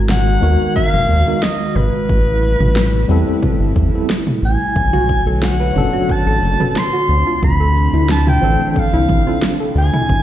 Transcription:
Already playing: analog synth bass G#1, analog synth pad D#3 G#3 F#4 A#5
0.09 soprano saxophone F#5, snare, mid tom, shaker
0.27 shaker
0.41 analog synth bass D#2, tine electric piano G#3 B3 D#4 F#4 A#4, shaker
0.61 shaker
0.76 soprano saxophone F5, kick, shaker
0.93 analog synth bass F#1, mid tom, shaker
1.09 analog synth bass D#2, shaker
1.26 tine electric piano G#3 B3 D#4 F#4 A#4, shaker
1.43 soprano saxophone D#5, snare, shaker
1.61 shaker
1.75 analog synth bass G#1, soprano saxophone B4, mid tom, shaker
1.94 shaker
2.09 analog synth bass A1, analog synth pad C3 G3 A3 E4, kick, shaker
2.28 shaker
2.43 shaker
2.60 analog synth bass A1, mid tom, shaker
2.76 snare, shaker
2.94 shaker
3.08 analog synth bass E2, tine electric piano G3 B3 C4 E4 A4, shaker
3.27 shaker
3.43 kick, mid tom, shaker
3.60 analog synth bass G1, shaker
3.76 analog synth bass E2, kick, shaker
3.94 tine electric piano G3 B3 C4 E4 A4, shaker
4.10 snare, shaker
4.27 mid tom, shaker
4.42 analog synth bass A1, soprano saxophone G#5, shaker
4.61 shaker
4.75 analog synth bass B1, analog synth pad D3 F#4 C#5, kick, shaker
4.93 synth arpeggio sound F#4, mid tom, shaker
5.09 kick, shaker
5.26 analog synth bass B1, synth arpeggio sound A4, shaker
5.43 soprano saxophone F#5, snare, shaker
5.60 synth arpeggio sound B4, shaker
5.75 analog synth bass F#1, tine electric piano F#3 B3 C#4 D4 A4, mid tom, shaker
5.93 synth arpeggio sound F#4, shaker
6.09 soprano saxophone A5, kick, shaker
6.26 analog synth bass A1, synth arpeggio sound A4, shaker
6.42 analog synth bass F#1, shaker
6.60 tine electric piano F#3 B3 C#4 D4 A4, synth arpeggio sound B4, mid tom, shaker
6.76 soprano saxophone C6, snare, shaker
6.93 synth arpeggio sound F#4, shaker
7.09 analog synth bass D2, analog synth pad C3 D3 A3 C4 D4, shaker
7.27 synth arpeggio sound F4, shaker
7.43 analog synth bass D2, soprano saxophone B5, kick, mid tom, shaker
7.60 synth arpeggio sound A4, shaker
7.76 shaker
7.93 analog synth bass D2, synth arpeggio sound E4, shaker
8.09 soprano saxophone A5, snare, shaker
8.27 synth arpeggio sound F4, soprano saxophone G5, mid tom, shaker
8.41 analog synth bass A1, tine electric piano E3 F3 C4 D4 A4, shaker
8.60 synth arpeggio sound A4, shaker
8.71 soprano saxophone G5
8.76 soprano saxophone F5, kick, shaker
8.93 analog synth bass C2, synth arpeggio sound E4, shaker
9.09 analog synth bass A1, kick, mid tom, shaker
9.26 tine electric piano F3 C4 D4 E4 A4, synth arpeggio sound F4, shaker
9.42 snare, shaker
9.60 synth arpeggio sound A4, shaker
9.75 analog synth bass D2, soprano saxophone G#5, shaker
9.93 synth arpeggio sound E4, mid tom, shaker
10.09 analog synth bass G#1, analog synth pad D#3 G#3 F#4 A#4, kick, shaker

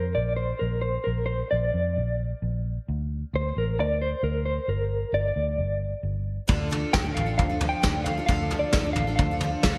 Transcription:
Already playing: fingered electric bass F2, clean electric guitar A#4
0.15 fingered electric bass A#1, clean electric guitar D5
0.36 clean electric guitar C5
0.59 fingered electric bass A#1, clean electric guitar A#4
0.81 clean electric guitar C5
1.04 fingered electric bass A#1, clean electric guitar A#4
1.26 clean electric guitar C5
1.51 fingered electric bass A#1, clean electric guitar D5
1.74 fingered electric bass F2
1.97 fingered electric bass A#1
2.42 fingered electric bass A#1
2.88 fingered electric bass D2
3.33 fingered electric bass D2, clean electric guitar C5
3.56 fingered electric bass A1, clean electric guitar A#4
3.79 fingered electric bass D2, clean electric guitar D5
4.02 clean electric guitar C5
4.23 fingered electric bass D2, clean electric guitar A#4
4.45 clean electric guitar C5
4.68 fingered electric bass G1, clean electric guitar A#4
5.12 fingered electric bass G1, clean electric guitar D5
5.36 fingered electric bass D2
5.58 fingered electric bass G1
6.03 fingered electric bass G1
6.47 fingered electric bass D2, twelve-string acoustic guitar D3 F3 D4 F4 A4, kick, floor tom
6.70 twelve-string acoustic guitar F3 D4 F4 A4, floor tom
6.93 fingered electric bass D2, twelve-string acoustic guitar D3 F3 D4 F4 A4, clean electric guitar G5, kick, snare, floor tom
7.04 twelve-string acoustic guitar D4 F4 A4
7.14 fingered electric bass A1, steel-string acoustic guitar F4, clean electric guitar F5, floor tom
7.26 twelve-string acoustic guitar D4 F4 A4
7.38 fingered electric bass D2, steel-string acoustic guitar F3, clean electric guitar F5, kick, floor tom
7.49 twelve-string acoustic guitar D4 F4 A4
7.61 twelve-string acoustic guitar F3 D4 F4 A4, floor tom
7.69 clean electric guitar G5
7.83 fingered electric bass D2, twelve-string acoustic guitar D3 F3 D4 F4 A4, kick, snare, floor tom
8.04 twelve-string acoustic guitar F3 D4 F4 A4, clean electric guitar F5, floor tom
8.18 twelve-string acoustic guitar D4 F4 A4
8.26 fingered electric bass D2, twelve-string acoustic guitar D3 F3 D4 F4 A4, clean electric guitar F5, kick, floor tom
8.50 twelve-string acoustic guitar F3 D4 F4 A4, floor tom
8.59 clean electric guitar D5
8.73 fingered electric bass D2, twelve-string acoustic guitar D3 F3 D4 F4 A4, kick, snare, floor tom
8.85 twelve-string acoustic guitar D4 F4 A4
8.93 fingered electric bass A1, steel-string acoustic guitar F4, clean electric guitar F5, floor tom
9.07 twelve-string acoustic guitar D4 F4 A4
9.16 fingered electric bass D2, steel-string acoustic guitar F3, clean electric guitar F5, kick, floor tom
9.31 twelve-string acoustic guitar D4 F4 A4
9.41 twelve-string acoustic guitar F3 D4 F4 A4, floor tom
9.63 fingered electric bass D2, twelve-string acoustic guitar D3 F3 D4 F4 A4, kick, snare, floor tom

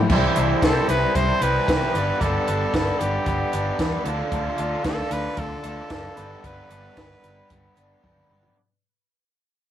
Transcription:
Already playing: fingered electric bass A2
0.09 fingered electric bass C2, overdriven electric guitar C3 E3 G3 C4 E4 C5, trumpet E4, kick, crash
0.35 fingered electric bass C2, overdriven electric guitar G3 C4 E4 C5, closed hi-hat
0.62 fingered electric bass C2, overdriven electric guitar G3 C4 E4 C5, trumpet A4, kick, snare, closed hi-hat
0.88 fingered electric bass C2, overdriven electric guitar G3 C4 E4 C5, trumpet B4, closed hi-hat
1.14 fingered electric bass C2, overdriven electric guitar C3 E3 G3 C4 E4 C5, trumpet C5, kick, closed hi-hat
1.40 fingered electric bass C2, overdriven electric guitar G3 C4 E4 C5, trumpet B4, closed hi-hat
1.67 fingered electric bass C2, overdriven electric guitar C3 E3 G3 C4 E4 C5, kick, snare, closed hi-hat
1.94 fingered electric bass G1, overdriven electric guitar G3 B3 D4 B4, closed hi-hat
2.20 fingered electric bass G1, overdriven electric guitar G3 B3 D4 B4, trumpet A4, kick, closed hi-hat
2.46 fingered electric bass G1, overdriven electric guitar B3 D4 B4, closed hi-hat
2.73 fingered electric bass G1, overdriven electric guitar G3 B3 D4 B4, kick, snare, closed hi-hat
2.99 fingered electric bass G1, overdriven electric guitar B3 D4 B4, trumpet G4, closed hi-hat
3.26 fingered electric bass G1, overdriven electric guitar G3 B3 D4 B4, kick, closed hi-hat
3.52 fingered electric bass G1, overdriven electric guitar B3 D4 B4, closed hi-hat
3.79 fingered electric bass E2, overdriven electric guitar G3 B3 D4 B4, kick, snare, closed hi-hat
4.05 fingered electric bass D2, overdriven electric guitar D3 D4 F4 A4, closed hi-hat
4.31 fingered electric bass D2, overdriven electric guitar D3 D4 F4 A4, trumpet F4, kick, closed hi-hat
4.58 fingered electric bass D2, overdriven electric guitar D4 F4 A4, closed hi-hat
4.83 fingered electric bass D2, overdriven electric guitar D3 D4 F4 A4, trumpet A4, kick, snare, closed hi-hat
5.10 fingered electric bass D2, overdriven electric guitar D4 F4 A4, trumpet B4, closed hi-hat
5.37 fingered electric bass D2, overdriven electric guitar D3 D4 F4 A4, trumpet A4, kick, closed hi-hat
5.63 fingered electric bass D2, overdriven electric guitar D4 F4 A4, closed hi-hat
5.89 fingered electric bass F#1, overdriven electric guitar D3 D4 F4 A4, kick, snare, closed hi-hat
6.16 fingered electric bass G1, overdriven electric guitar G3 B3 D4 B4, closed hi-hat
6.43 fingered electric bass G1, overdriven electric guitar G3 B3 D4 B4, trumpet B4, kick, closed hi-hat
6.69 fingered electric bass G1, overdriven electric guitar B3 D4 B4, closed hi-hat
6.96 fingered electric bass G1, overdriven electric guitar G3 B3 D4 B4, kick, snare, closed hi-hat
7.24 fingered electric bass G1, overdriven electric guitar B3 D4 B4, closed hi-hat
7.49 fingered electric bass G1, overdriven electric guitar G3 B3 D4 B4, kick, closed hi-hat
7.77 fingered electric bass G1, overdriven electric guitar B3 D4 B4, closed hi-hat
8.03 fingered electric bass G1, overdriven electric guitar G3 B3 D4 B4, kick, high tom
8.17 mid tom
8.30 fingered electric bass G1, overdriven electric guitar B3 D4 B4, mid tom
8.43 floor tom

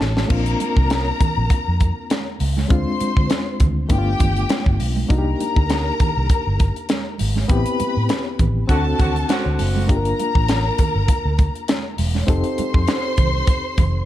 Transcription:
Already playing: reed electric piano A3 C4 D#4 F#4, string section A4 A5
0.01 fingered electric bass A1, snare
0.17 snare, high conga
0.29 fingered electric bass A#1, reed electric piano A#3 C4 D4 F4, string section A#4 A#5, kick, crash, muted conga
0.46 closed hi-hat
0.60 closed hi-hat, muted conga
0.77 fingered electric bass C2, kick
0.90 snare, closed hi-hat, high conga
1.20 muted fingered electric bass stroke, kick, closed hi-hat, low conga
1.37 fingered electric bass A#1
1.50 kick, closed hi-hat, muted conga
1.68 fingered electric bass F2
1.80 kick, closed hi-hat, muted conga
2.10 snare, closed hi-hat, high conga
2.40 fingered electric bass C#2, open hi-hat, high conga
2.57 snare, high conga
2.68 fingered electric bass D2, reed electric piano G#3 C4 D4 F4, string section C5 C6, kick, closed hi-hat
3.00 muted fingered electric bass stroke, closed hi-hat, muted conga
3.17 fingered electric bass D3, kick
3.30 snare, closed hi-hat, high conga
3.60 fingered electric bass D2, kick, closed hi-hat, low conga
3.89 fingered electric bass G1, reed electric piano A3 B3 D4 E4, string section G4 G5, kick, closed hi-hat, muted conga
3.98 reed electric piano F4
4.19 fingered electric bass G1, kick, closed hi-hat, muted conga, low conga
4.37 closed hi-hat
4.49 snare, closed hi-hat, high conga
4.66 fingered electric bass G1, kick
4.79 fingered electric bass B1, open hi-hat, high conga
4.96 high conga
5.09 fingered electric bass C2, reed electric piano A#3 D4 D#4 F#4, string section A#4 A#5, kick, closed hi-hat
5.18 reed electric piano G4
5.40 closed hi-hat, muted conga
5.56 fingered electric bass D2, kick
5.70 snare, closed hi-hat, high conga
6.00 muted fingered electric bass stroke, kick, closed hi-hat, low conga
6.17 fingered electric bass C2
6.29 kick, closed hi-hat
6.47 fingered electric bass G1
6.59 kick, closed hi-hat, muted conga
6.76 closed hi-hat
6.89 snare, closed hi-hat, high conga
7.18 fingered electric bass G#1, open hi-hat, high conga
7.36 snare, high conga
7.48 fingered electric bass A1, reed electric piano B3 C4 E4 G4, string section B4 B5, kick, closed hi-hat, muted conga
7.66 closed hi-hat
7.80 muted fingered electric bass stroke, closed hi-hat, muted conga
7.97 fingered electric bass A2
8.09 snare, closed hi-hat, high conga
8.39 fingered electric bass A1, kick, closed hi-hat, low conga
8.68 fingered electric bass D2, horn section D3 C4 F#4, reed electric piano C4 D4 F#4 A4, string section A4 A5, kick, closed hi-hat, muted conga
8.99 fingered electric bass D2, horn section D3 C4 F#4, kick, closed hi-hat, muted conga, low conga
9.16 closed hi-hat
9.29 horn section D3 C4 F#4, snare, closed hi-hat, high conga
9.46 fingered electric bass D2
9.59 fingered electric bass F#1, open hi-hat, high conga
9.76 high conga
9.87 fingered electric bass G1, reed electric piano A#3 D4 F4 G4, string section A#4 A#5, kick, closed hi-hat, muted conga
9.97 reed electric piano A#4
10.05 closed hi-hat
10.19 closed hi-hat, muted conga
10.35 fingered electric bass A1, kick
10.48 snare, closed hi-hat, high conga
10.78 muted fingered electric bass stroke, kick, closed hi-hat, low conga
10.95 fingered electric bass G1
11.08 kick, closed hi-hat, muted conga
11.25 fingered electric bass D2
11.38 kick, closed hi-hat, muted conga
11.55 closed hi-hat
11.68 snare, closed hi-hat, high conga
11.98 fingered electric bass E1, open hi-hat, high conga
12.14 snare, high conga
12.27 fingered electric bass F1, reed electric piano C4 D#4 G4 A4, string section C5 C6, kick, closed hi-hat
12.44 closed hi-hat
12.58 muted fingered electric bass stroke, closed hi-hat, muted conga
12.74 fingered electric bass F2, kick
12.88 snare, closed hi-hat, high conga
13.18 fingered electric bass C2, kick, closed hi-hat, low conga
13.47 kick, closed hi-hat, muted conga
13.78 fingered electric bass F1, kick, closed hi-hat, muted conga, low conga

